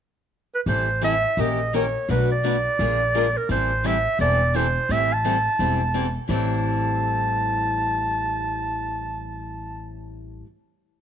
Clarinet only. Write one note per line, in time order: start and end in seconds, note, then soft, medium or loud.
0.54 0.60 B4 medium
0.69 1.01 C5 medium
1.04 1.42 E5 medium
1.41 1.75 D#5 medium
1.76 2.07 C#5 medium
2.11 2.30 B4 medium
2.32 3.39 D5 medium
3.37 3.50 A#4 medium
3.52 3.88 C5 medium
3.86 4.21 E5 medium
4.21 4.57 D5 medium
4.56 4.93 C5 medium
4.92 5.15 E5 medium
5.14 6.17 A5 medium
6.30 9.86 A5 medium